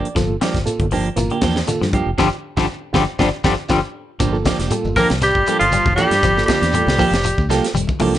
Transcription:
Already playing: D5
0.05 closed hi-hat
0.15 G1 F3 A#3 F4 A4, kick, snare, closed hi-hat, shekere
0.41 F3 G3 A#3 D4 G4, snare, closed hi-hat, high conga, shekere
0.54 G1, kick, snare, closed hi-hat
0.66 A#3 F4 A4, closed hi-hat, high conga, shekere
0.79 G1, kick, closed hi-hat, high conga
0.91 F3 A#3 D4 G4, open hi-hat, low conga, shekere
1.05 closed hi-hat
1.16 G1 E3 A#3 F4 A#4, closed hi-hat, high conga, shekere
1.30 D3 A#3 D4 G4, closed hi-hat
1.41 E2 F3 A#3 D4 G4, kick, snare, closed hi-hat, shekere
1.56 snare
1.66 D3 A#3 F4 A4, closed hi-hat, high conga, shekere
1.81 G2 F3, snare, high conga
1.93 F3 A#3 D4 G4, kick, closed hi-hat, high conga, low conga, shekere
2.07 F1
2.18 G1 D3 F3 G3 D4 F4 G4, kick, snare, high conga, shekere
2.57 G1 D3 F3 G3 D4 F4 G4, kick, snare, high conga, shekere
2.93 G1 D3 F3 G3 D4 F4 G4, kick, snare, high conga, shekere
3.19 G1 D3 F3 G3 D4 F4 G4, kick, snare, high conga, shekere
3.44 G1 D3 F3 G3 D4 F4 G4, kick, snare, high conga, shekere
3.69 G1 D3 F3 G3 D4 F4 G4, kick, snare, high conga, shekere
4.20 G1 F3 A#3 D4 G4, kick, closed hi-hat, shekere
4.33 A#3 F4 A4, shekere
4.45 D3 F3 A#3 D4 G4, kick, snare, closed hi-hat, high conga, shekere
4.59 F1 A#3 D4 G4, snare, closed hi-hat, shekere
4.70 G3 A#3 F4 A4, closed hi-hat, high conga, shekere
4.84 G1, high conga, shekere
4.96 F3 A#3 D4 G4 A#4, kick, open hi-hat, high conga, low conga, shekere
5.10 C2, snare, closed hi-hat, shekere
5.21 G3 G4, muted clean electric guitar stroke, snare, closed hi-hat, high conga, shekere
5.35 G1, kick, shekere
5.46 F3 G3 A#3 D4 F4 G4 A4, closed hi-hat, shekere
5.59 G1 F3 F4, closed hi-hat, shekere
5.71 G3, closed hi-hat, high conga, shekere
5.86 F1, kick, high conga, shekere
5.95 E3 F3 G3 A#3 D4 F4 G4 A4, closed hi-hat, high conga, low conga, shekere
6.11 G2, snare, closed hi-hat, shekere
6.23 G1 F3, kick, closed hi-hat, shekere
6.37 A#3 F4 A4, snare, shekere
6.45 D3 F3 G3 A#3 D4 G4, kick, high conga, shekere
6.50 G4, snare, closed hi-hat
6.62 E2 A#3 D4 G4, snare, closed hi-hat, shekere
6.73 G3 A#3 F4 A4, closed hi-hat, shekere
6.86 C2, snare, high conga, shekere
6.98 F3 A#3 D4 G4, kick, open hi-hat, high conga, low conga, shekere
7.11 F1, snare, closed hi-hat, shekere
7.24 F3, closed hi-hat, shekere
7.38 D2, kick, shekere
7.49 C2 F3 G3 A#3 D4 F4 G4 A4, snare, closed hi-hat, shekere
7.63 snare, closed hi-hat, shekere
7.74 F1 G3, closed hi-hat, high conga, shekere
7.87 kick, high conga, shekere
8.00 C2 E3 F3 A#3 D4 F4 G4 A4, kick, open hi-hat, high conga, low conga, shekere
8.14 A#3 D4 G4, snare, closed hi-hat, shekere

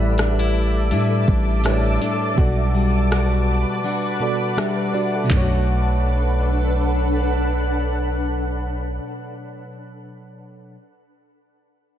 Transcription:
Already playing: A1 A2 G3 A3 E4 G4 A4 B4 D5 E5 A5 D6
0.18 D4, cross-stick, closed hi-hat
0.39 E4
0.91 A2 G3 D4 E4, closed hi-hat
1.28 A1, kick
1.63 A2 G3 A3 D4 E4 G4 B4 C#5, cross-stick, closed hi-hat
1.73 D5
2.01 D4, closed hi-hat
2.35 B1 B2 G3 F#4 B4 F#5, kick
2.40 A4 D5
2.75 G3
3.11 F#4, cross-stick
3.84 G3 D4 F#4
4.19 B2 G3 F#4 A4 D5
4.57 G3 D4 F#4 G4 E5, cross-stick
4.94 D4 F#4 D5
5.15 A4 F#5
5.24 B2 F#3
5.30 B1 A3 D4 A4 B4 F#5, kick, clap, floor tom
5.37 D4 C#5
5.42 F#4

